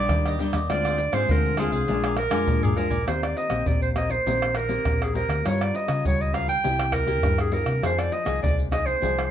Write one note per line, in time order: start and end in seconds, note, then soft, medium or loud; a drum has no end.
0.00 0.34 G3 medium
0.00 0.34 A#3 medium
0.00 0.35 D4 medium
0.00 0.24 G4 medium
0.00 0.23 D5 medium
0.00 0.36 D5 medium
0.00 0.24 D#5 medium
0.09 0.66 A#2 medium
0.09 0.36 D#3 medium
0.09 pandeiro medium
0.09 tamborim medium
0.09 shaker medium
0.09 surdo loud
0.26 0.39 G4 medium
0.26 0.39 D5 medium
0.26 0.39 D#5 medium
0.26 pandeiro soft
0.26 tamborim medium
0.26 shaker soft
0.39 0.57 G3 medium
0.39 0.57 A#3 soft
0.39 0.53 D4 soft
0.39 0.57 D4 medium
0.39 0.53 G4 medium
0.39 0.52 D5 medium
0.39 0.53 D#5 medium
0.39 pandeiro medium
0.39 shaker medium
0.53 0.67 D#2 medium
0.53 0.68 G4 medium
0.53 0.68 D5 medium
0.53 0.68 D#5 medium
0.53 pandeiro medium
0.53 tamborim medium
0.53 shaker medium
0.69 1.08 D2 medium
0.69 1.26 D3 medium
0.69 0.98 G#3 medium
0.69 0.98 C4 soft
0.69 0.83 D4 soft
0.69 0.98 F4 medium
0.69 0.84 G#4 soft
0.69 0.84 C5 medium
0.69 1.15 D5 medium
0.69 0.83 F5 medium
0.69 pandeiro medium
0.69 tamborim medium
0.69 shaker medium
0.69 surdo medium
0.84 0.98 G#4 medium
0.84 0.98 C5 medium
0.84 0.98 F5 medium
0.84 pandeiro soft
0.84 tamborim medium
0.84 shaker soft
0.98 muted cavaquinho stroke soft
0.98 pandeiro medium
1.12 1.26 G#2 medium
1.12 1.53 G#3 medium
1.12 1.53 C4 medium
1.12 1.54 F4 medium
1.12 1.28 G#4 soft
1.12 1.28 C5 medium
1.12 1.32 C5 medium
1.12 1.27 F5 medium
1.12 pandeiro medium
1.12 tamborim medium
1.12 shaker medium
1.29 1.67 D2 medium
1.29 1.85 D3 soft
1.29 1.57 D4 soft
1.29 1.58 G#4 soft
1.29 1.60 A#4 medium
1.29 1.58 C5 soft
1.29 1.59 F5 soft
1.29 pandeiro medium
1.29 shaker medium
1.29 surdo loud
1.45 pandeiro soft
1.45 shaker soft
1.57 1.83 G#3 medium
1.57 1.83 C4 soft
1.57 1.72 D4 medium
1.57 1.83 F4 medium
1.57 2.17 G#4 medium
1.57 1.73 G#4 medium
1.57 1.72 C5 medium
1.57 1.71 F5 medium
1.57 pandeiro medium
1.57 tamborim medium
1.72 1.86 C2 medium
1.72 1.87 G#4 soft
1.72 1.87 C5 medium
1.72 1.87 F5 medium
1.72 pandeiro soft
1.72 shaker medium
1.88 2.27 A#1 medium
1.88 2.45 A#2 medium
1.88 2.16 G#3 medium
1.88 2.16 D4 medium
1.88 2.02 D4 soft
1.88 2.17 F4 medium
1.88 2.03 A#4 soft
1.88 2.03 D5 medium
1.88 2.03 G#5 soft
1.88 pandeiro medium
1.88 shaker medium
1.88 surdo medium
2.04 2.17 A#4 soft
2.04 2.17 D5 medium
2.04 2.18 G#5 medium
2.04 pandeiro soft
2.04 tamborim medium
2.04 shaker soft
2.17 2.65 A#4 medium
2.17 muted cavaquinho stroke soft
2.17 pandeiro medium
2.17 tamborim medium
2.30 2.45 F2 medium
2.30 2.72 G#3 medium
2.30 2.72 D4 medium
2.30 2.72 F4 medium
2.30 2.61 A#4 medium
2.30 2.61 D5 medium
2.30 2.61 G#5 medium
2.30 pandeiro medium
2.30 tamborim medium
2.30 shaker medium
2.47 2.73 A#2 medium
2.47 3.04 F3 soft
2.47 pandeiro medium
2.47 shaker medium
2.47 surdo loud
2.63 2.78 G#4 medium
2.63 2.76 A#4 medium
2.63 2.77 D5 medium
2.63 2.77 G#5 medium
2.63 surdo medium
2.63 pandeiro soft
2.63 shaker soft
2.76 2.95 G#3 medium
2.76 2.95 D4 medium
2.76 2.91 D4 soft
2.76 2.95 F4 medium
2.76 3.07 A#4 medium
2.76 2.91 A#4 medium
2.76 2.90 D5 soft
2.76 2.89 G#5 medium
2.76 pandeiro medium
2.90 3.04 A#1 medium
2.90 3.06 A#4 medium
2.90 3.06 D5 medium
2.90 3.05 G#5 medium
2.90 pandeiro medium
2.90 shaker medium
2.90 surdo medium
3.07 3.33 D#2 medium
3.07 3.64 D#3 medium
3.07 3.47 A#3 medium
3.07 3.47 C4 soft
3.07 3.48 G4 medium
3.07 3.21 C5 medium
3.07 pandeiro medium
3.07 tamborim medium
3.07 shaker medium
3.07 surdo medium
3.23 3.36 D5 medium
3.23 pandeiro soft
3.23 tamborim medium
3.23 shaker soft
3.37 3.68 D#5 medium
3.37 pandeiro medium
3.37 shaker medium
3.49 3.64 A#1 medium
3.49 3.91 A#3 medium
3.49 3.91 C4 medium
3.49 3.91 G4 medium
3.49 pandeiro medium
3.49 tamborim medium
3.49 shaker medium
3.66 4.18 A#1 medium
3.66 4.23 A#2 medium
3.66 3.82 D5 medium
3.66 pandeiro medium
3.66 shaker medium
3.66 surdo loud
3.82 3.89 C5 medium
3.82 pandeiro soft
3.82 shaker soft
3.95 4.14 A#3 medium
3.95 4.14 C4 medium
3.95 4.14 G4 medium
3.95 4.12 D#5 medium
3.95 pandeiro medium
3.95 tamborim medium
4.10 4.58 C5 medium
4.10 pandeiro medium
4.10 shaker medium
4.26 4.77 A#1 medium
4.26 4.83 D#3 medium
4.26 4.54 A#3 medium
4.26 4.54 C4 medium
4.26 4.55 G4 medium
4.26 pandeiro medium
4.26 shaker medium
4.26 surdo medium
4.42 pandeiro soft
4.42 tamborim medium
4.42 shaker soft
4.55 5.04 A#4 medium
4.55 pandeiro medium
4.55 tamborim medium
4.55 shaker medium
4.69 5.10 A#3 medium
4.69 5.10 C4 medium
4.69 5.10 G4 medium
4.69 pandeiro medium
4.69 shaker medium
4.85 5.24 A#1 medium
4.85 5.42 A#2 soft
4.85 pandeiro medium
4.85 tamborim medium
4.85 shaker medium
4.85 surdo medium
5.02 5.15 G#4 medium
5.02 pandeiro soft
5.02 tamborim medium
5.02 shaker soft
5.14 5.40 A#3 medium
5.14 5.40 C4 soft
5.14 5.40 G4 medium
5.14 5.48 A#4 medium
5.14 pandeiro medium
5.29 5.42 D2 medium
5.29 pandeiro medium
5.29 tamborim medium
5.29 shaker medium
5.45 5.71 G2 medium
5.45 6.02 G3 medium
5.45 5.85 C#4 medium
5.45 5.85 F4 medium
5.45 5.86 A#4 medium
5.45 5.63 C#5 medium
5.45 pandeiro medium
5.45 tamborim medium
5.45 shaker medium
5.45 surdo medium
5.61 5.77 D5 medium
5.61 pandeiro soft
5.61 tamborim medium
5.61 shaker soft
5.75 6.05 D#5 medium
5.75 pandeiro medium
5.87 6.02 C#3 medium
5.87 6.29 C#4 medium
5.87 6.29 F4 medium
5.87 6.29 A#4 medium
5.87 pandeiro medium
5.87 tamborim medium
5.87 shaker medium
6.05 6.56 C#2 medium
6.05 6.61 G3 soft
6.05 6.23 C#5 medium
6.05 pandeiro medium
6.05 shaker medium
6.05 surdo medium
6.21 6.36 D#5 medium
6.21 pandeiro soft
6.21 shaker soft
6.33 6.51 C#4 medium
6.33 6.51 F4 medium
6.33 6.52 A#4 medium
6.33 6.48 F5 medium
6.33 pandeiro medium
6.33 tamborim medium
6.48 6.95 G5 loud
6.48 pandeiro medium
6.48 shaker medium
6.64 7.23 C2 medium
6.64 7.20 C3 medium
6.64 7.04 A#3 medium
6.64 7.04 E4 medium
6.64 7.04 G4 medium
6.64 pandeiro medium
6.64 shaker medium
6.64 surdo medium
6.79 pandeiro soft
6.79 tamborim medium
6.79 shaker soft
6.92 7.42 A#4 medium
6.92 pandeiro medium
6.92 tamborim medium
6.92 shaker medium
6.92 surdo medium
7.07 7.48 A#3 medium
7.07 7.48 E4 medium
7.07 7.48 G4 medium
7.07 pandeiro medium
7.07 shaker medium
7.23 7.80 G2 medium
7.23 7.61 G2 loud
7.23 pandeiro medium
7.23 tamborim medium
7.23 shaker medium
7.23 surdo loud
7.38 7.55 G#4 medium
7.38 pandeiro soft
7.38 tamborim medium
7.38 shaker soft
7.51 7.70 A#3 medium
7.51 7.70 E4 medium
7.51 7.70 G4 medium
7.51 7.83 A#4 medium
7.51 pandeiro medium
7.66 7.80 C3 medium
7.66 pandeiro medium
7.66 tamborim medium
7.66 shaker medium
7.82 8.09 F2 medium
7.82 8.39 F3 medium
7.82 8.11 A#3 medium
7.82 8.11 D#4 medium
7.82 8.11 G#4 medium
7.82 8.01 C5 medium
7.82 pandeiro medium
7.82 tamborim medium
7.82 shaker medium
7.82 surdo medium
7.99 8.14 D5 medium
7.99 pandeiro soft
7.99 tamborim medium
7.99 shaker soft
8.12 8.42 D#5 medium
8.12 pandeiro medium
8.25 8.40 C2 medium
8.25 8.66 A#3 medium
8.25 8.67 D#4 medium
8.25 8.67 G#4 medium
8.25 pandeiro medium
8.25 tamborim medium
8.25 shaker medium
8.42 8.93 C2 medium
8.42 8.99 C3 medium
8.42 8.56 D5 medium
8.42 pandeiro medium
8.42 shaker medium
8.42 surdo loud
8.59 pandeiro soft
8.59 shaker soft
8.71 8.97 A#3 medium
8.71 8.97 D#4 medium
8.71 8.97 G#4 medium
8.71 8.88 D#5 medium
8.71 pandeiro medium
8.71 tamborim medium
8.71 shaker medium
8.86 9.24 C5 loud
8.86 pandeiro soft
8.86 shaker medium
9.01 9.31 C2 medium
9.01 9.31 F3 medium
9.01 9.31 A#3 medium
9.01 9.31 D#4 medium
9.01 9.31 G#4 medium
9.01 pandeiro medium
9.01 shaker medium
9.01 surdo medium
9.19 pandeiro soft
9.19 tamborim medium
9.19 shaker soft
9.25 9.31 C5 medium